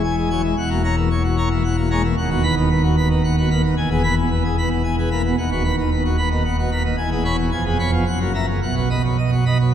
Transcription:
0.00 0.53 E1 medium
0.00 0.53 E2 loud
0.00 0.16 G#5 medium
0.17 0.29 G#3 medium
0.17 0.29 G#4 medium
0.30 0.42 F#3 medium
0.30 0.42 C#5 medium
0.30 0.42 G#5 medium
0.43 0.55 E3 medium
0.43 0.55 G#3 medium
0.57 2.13 E1 loud
0.57 2.13 E2 loud
0.57 0.69 F#5 medium
0.70 0.82 A#3 medium
0.70 0.82 F#4 medium
0.84 0.95 C#5 medium
0.84 0.95 A#5 loud
0.96 1.09 E3 medium
0.96 1.09 A#3 medium
1.11 1.23 C#5 medium
1.24 1.36 F#4 medium
1.37 1.49 C#5 medium
1.37 1.49 A#5 loud
1.51 1.63 E3 medium
1.51 1.63 A#3 medium
1.64 1.76 F#5 loud
1.77 1.89 A#3 medium
1.77 1.89 F#4 medium
1.91 2.02 G#3 medium
1.91 2.02 C#5 medium
1.91 2.02 A#5 medium
2.04 2.15 E3 medium
2.04 2.15 A#3 medium
2.17 3.73 D#1 loud
2.17 3.73 D#2 loud
2.17 2.29 F#5 medium
2.30 2.42 B3 medium
2.30 2.42 F#4 medium
2.43 2.55 B4 medium
2.43 2.55 B5 loud
2.57 2.69 D#3 medium
2.57 2.69 B3 medium
2.70 2.82 B4 loud
2.83 2.95 F#4 medium
2.97 3.08 B4 medium
2.97 3.08 B5 loud
3.10 3.22 D#3 medium
3.10 3.22 B3 medium
3.24 3.36 F#5 loud
3.38 3.49 B3 medium
3.38 3.49 F#4 medium
3.50 3.62 A#3 medium
3.50 3.62 B4 medium
3.50 3.62 B5 loud
3.64 3.75 D#3 medium
3.64 3.75 B3 medium
3.77 5.33 E1 loud
3.77 5.33 E2 loud
3.77 3.89 G#5 loud
3.91 4.03 B3 medium
3.91 4.02 G#4 medium
4.03 4.15 B4 medium
4.03 4.15 B5 loud
4.18 4.29 B2 medium
4.18 4.29 B3 medium
4.31 4.43 B4 medium
4.45 4.56 G#4 medium
4.58 4.69 B4 medium
4.58 4.69 B5 loud
4.71 4.82 B2 medium
4.71 4.82 B3 medium
4.84 4.96 G#5 medium
4.98 5.09 B3 medium
4.98 5.09 G#4 medium
5.11 5.22 A#3 medium
5.11 5.22 B4 medium
5.11 5.22 B5 medium
5.25 5.36 B2 medium
5.25 5.36 B3 medium
5.38 6.95 D#1 loud
5.38 6.94 D#2 medium
5.38 5.50 F#5 loud
5.51 5.63 B3 medium
5.51 5.63 F#4 medium
5.64 5.75 B4 medium
5.64 5.75 B5 loud
5.78 5.90 D#3 medium
5.78 5.90 B3 medium
5.91 6.03 B4 loud
6.05 6.16 F#4 medium
6.18 6.29 B4 medium
6.18 6.29 B5 medium
6.31 6.43 D#3 medium
6.31 6.43 B3 medium
6.45 6.56 F#5 loud
6.59 6.70 B3 medium
6.59 6.70 F#4 medium
6.71 6.83 A#3 medium
6.71 6.83 B4 medium
6.71 6.83 B5 medium
6.85 6.96 D#3 medium
6.85 6.96 B3 medium
6.98 7.50 E1 loud
6.98 7.50 E2 medium
6.98 7.10 G#5 loud
7.12 7.23 B3 medium
7.12 7.24 G#4 medium
7.25 7.36 C#5 medium
7.25 7.36 B5 loud
7.39 7.50 B2 medium
7.39 7.50 B3 medium
7.52 8.05 F1 loud
7.52 8.05 F2 loud
7.52 7.64 G#5 medium
7.66 7.78 B3 medium
7.66 7.78 G#4 medium
7.79 7.91 C#5 medium
7.79 7.91 B5 loud
7.93 8.04 F3 medium
7.93 8.04 B3 medium
8.06 8.60 F#1 medium
8.06 8.60 F#2 medium
8.06 8.19 F#5 medium
8.20 8.33 A#3 medium
8.20 8.32 F#4 medium
8.34 8.46 E5 medium
8.34 8.46 A#5 loud
8.48 8.60 C#3 medium
8.48 8.60 A#3 medium
8.62 9.74 B1 medium
8.62 9.74 B2 medium
8.62 8.75 F#5 medium
8.76 8.89 B3 medium
8.76 8.89 F#4 medium
8.90 9.02 D#5 medium
8.90 9.02 B5 loud
9.04 9.17 F#3 medium
9.04 9.16 B3 medium
9.18 9.31 D#5 medium
9.32 9.44 F#4 medium
9.46 9.57 D#5 medium
9.46 9.57 B5 medium
9.59 9.72 F#3 medium
9.59 9.72 B3 medium

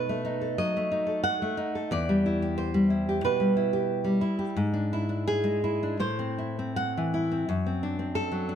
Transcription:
0.00 0.56 B2 medium
0.00 0.23 D#4 medium
0.00 0.40 A4 medium
0.00 0.56 B4 medium
0.09 0.75 A3 medium
0.25 0.90 D#4 medium
0.41 1.05 A4 medium
0.58 1.58 F#3 medium
0.58 1.23 D#5 medium
0.77 1.41 A3 medium
0.92 1.56 D#4 medium
1.07 1.74 A4 medium
1.24 1.88 F#5 loud
1.42 1.91 A3 medium
1.57 1.91 D#4 medium
1.75 1.92 A4 medium
1.91 3.20 E2 medium
1.91 2.56 D5 loud
2.09 2.73 G3 medium
2.26 2.89 E4 medium
2.42 3.08 G4 medium
2.58 3.22 C5 medium
2.74 3.39 G3 medium
2.90 3.55 E4 medium
3.09 3.72 G4 medium
3.24 4.23 B2 medium
3.24 4.19 B4 medium
3.40 4.03 G3 medium
3.57 4.20 E4 medium
3.73 4.38 G4 medium
4.04 4.56 G3 medium
4.21 4.56 E4 medium
4.39 4.57 G4 medium
4.56 5.95 G#2 medium
4.74 5.08 D4 medium
4.93 5.63 E4 medium
5.09 5.82 D4 medium
5.28 5.97 G#4 loud
5.44 5.99 G#3 medium
5.64 6.00 E4 medium
5.83 6.00 D4 medium
6.00 7.44 A2 medium
6.00 6.74 C5 loud
6.19 6.58 C4 medium
6.38 7.13 E4 medium
6.59 7.30 C4 medium
6.76 7.45 F#5 medium
6.97 7.48 E3 medium
7.14 7.48 E4 medium
7.32 7.48 C4 medium
7.49 8.55 F#2 medium
7.66 7.98 C4 medium
7.83 8.48 D4 medium
7.99 8.55 C4 medium
8.15 8.55 A4 medium
8.32 8.55 F#3 medium
8.49 8.55 D4 medium

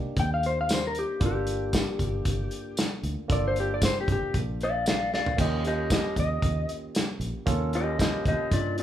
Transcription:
0.00 1.16 A#3 medium
0.00 1.16 D4 medium
0.00 1.17 D#4 medium
0.00 1.17 G4 medium
0.04 muted fingered electric bass stroke soft
0.17 1.03 D#2 loud
0.17 0.32 G5 medium
0.17 kick medium
0.17 closed hi-hat medium
0.34 0.44 F5 medium
0.43 0.58 C5 medium
0.43 closed hi-hat medium
0.61 0.70 F5 medium
0.69 snare loud
0.69 closed hi-hat medium
0.69 tambourine loud
0.74 0.85 C5 medium
0.87 0.96 A#4 medium
0.95 closed hi-hat medium
0.99 1.22 G4 medium
1.20 1.86 G1 loud
1.20 3.25 A#3 medium
1.20 3.25 D4 medium
1.20 3.26 F4 medium
1.20 3.26 A4 medium
1.20 kick loud
1.20 closed hi-hat medium
1.26 2.76 G4 medium
1.47 closed hi-hat medium
1.73 kick medium
1.73 snare loud
1.73 closed hi-hat medium
1.73 tambourine loud
1.99 2.21 G1 loud
1.99 kick medium
1.99 closed hi-hat medium
2.25 2.47 G1 medium
2.25 kick medium
2.25 closed hi-hat medium
2.51 closed hi-hat medium
2.77 snare loud
2.77 closed hi-hat medium
2.77 tambourine loud
3.03 3.15 D2 medium
3.03 closed hi-hat medium
3.28 3.95 G1 medium
3.28 5.33 A#3 medium
3.28 5.34 D4 medium
3.28 5.34 F4 medium
3.28 5.34 A4 medium
3.28 kick loud
3.28 closed hi-hat medium
3.32 3.45 D5 medium
3.48 3.57 C5 medium
3.56 closed hi-hat medium
3.60 3.71 G4 medium
3.74 3.83 D5 medium
3.82 3.97 C5 medium
3.82 kick medium
3.82 snare loud
3.82 closed hi-hat medium
3.82 tambourine loud
4.01 4.10 G4 medium
4.08 4.19 G1 medium
4.08 kick medium
4.08 closed hi-hat medium
4.12 4.35 G4 medium
4.22 muted fingered electric bass stroke soft
4.34 5.21 A#1 medium
4.34 kick medium
4.34 closed hi-hat medium
4.61 4.88 D5 medium
4.61 4.87 F5 medium
4.61 closed hi-hat medium
4.86 5.12 D5 medium
4.86 5.13 F5 medium
4.86 snare loud
4.86 closed hi-hat medium
4.86 tambourine loud
5.14 5.37 D5 medium
5.14 5.39 F5 medium
5.14 snare medium
5.26 floor tom medium
5.37 6.04 D#2 medium
5.37 7.42 A#3 medium
5.37 7.43 C#4 medium
5.37 7.43 F4 medium
5.37 7.43 G4 medium
5.37 5.63 G4 medium
5.37 kick loud
5.37 closed hi-hat medium
5.37 crash medium
5.41 5.65 D#5 medium
5.65 5.90 G4 medium
5.65 5.91 D#5 medium
5.65 closed hi-hat medium
5.90 6.16 G4 medium
5.90 6.17 D#5 loud
5.90 kick medium
5.90 snare loud
5.90 closed hi-hat medium
5.90 tambourine loud
6.16 6.38 D#2 medium
6.16 6.69 D#5 loud
6.16 kick medium
6.16 closed hi-hat medium
6.42 6.64 D#2 medium
6.42 kick medium
6.42 closed hi-hat medium
6.69 closed hi-hat medium
6.95 snare loud
6.95 closed hi-hat medium
6.95 tambourine loud
7.20 7.32 A#1 medium
7.20 closed hi-hat medium
7.46 8.12 D#2 loud
7.46 8.83 A#3 medium
7.46 8.83 C#4 medium
7.46 8.83 F4 medium
7.46 8.83 A4 medium
7.46 kick loud
7.46 closed hi-hat medium
7.73 7.99 G4 medium
7.73 8.00 D#5 medium
7.73 closed hi-hat medium
7.99 8.24 G4 medium
7.99 8.26 D#5 loud
7.99 kick medium
7.99 snare loud
7.99 closed hi-hat medium
7.99 tambourine loud
8.25 8.37 D#2 medium
8.25 8.51 G4 medium
8.25 8.52 D#5 medium
8.25 kick medium
8.25 closed hi-hat medium
8.39 muted fingered electric bass stroke soft
8.51 8.83 G2 loud
8.51 8.77 F4 medium
8.51 8.78 D5 medium
8.51 kick medium
8.51 closed hi-hat medium
8.78 8.83 F4 medium
8.78 closed hi-hat medium

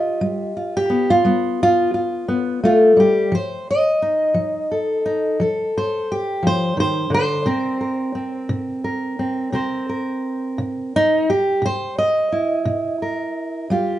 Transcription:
0.00 0.56 F4 soft
0.00 0.73 G4 soft
0.00 0.74 D#5 loud
0.21 0.83 G3 medium
0.57 1.10 F4 soft
0.77 1.10 G4 loud
0.90 1.24 B3 soft
1.10 1.61 F4 medium
1.25 1.87 G3 medium
1.25 2.27 B3 medium
1.63 1.93 F4 loud
1.94 2.63 F4 soft
2.28 2.63 B3 medium
2.63 2.96 A3 medium
2.63 2.99 F4 medium
2.97 3.32 G3 medium
2.97 3.33 G4 medium
3.32 3.94 F3 medium
3.32 3.68 C5 medium
3.70 5.76 D#5 medium
4.02 5.04 D#4 soft
4.34 4.97 F3 medium
4.71 5.40 A4 soft
5.06 5.40 D#4 soft
5.40 6.02 F3 medium
5.40 6.09 A4 medium
5.78 6.10 C5 medium
6.12 6.44 G4 medium
6.43 6.76 F3 medium
6.47 6.79 C5 loud
6.77 7.10 D#3 medium
6.77 7.13 C5 loud
7.10 7.46 D3 medium
7.14 8.51 C5 loud
7.46 8.08 C3 medium
7.46 8.14 C4 medium
7.46 7.79 A#4 medium
7.81 8.83 A#4 soft
8.15 9.18 C4 soft
8.49 9.12 C3 medium
8.84 9.52 A#4 medium
9.19 9.52 C4 soft
9.52 10.16 C3 medium
9.52 10.92 C4 soft
9.52 9.88 A#4 medium
9.52 11.58 C5 medium
9.89 11.28 A#4 medium
10.58 11.20 C3 medium
10.96 11.29 D#4 loud
11.30 11.63 G4 loud
11.62 12.24 C3 medium
11.62 11.98 C5 loud
11.98 13.71 D#5 loud
12.32 13.67 E4 medium
12.65 13.28 C3 medium
13.02 13.67 A#4 soft
13.70 13.99 G3 medium
13.70 13.99 F4 medium
13.70 13.99 G4 soft

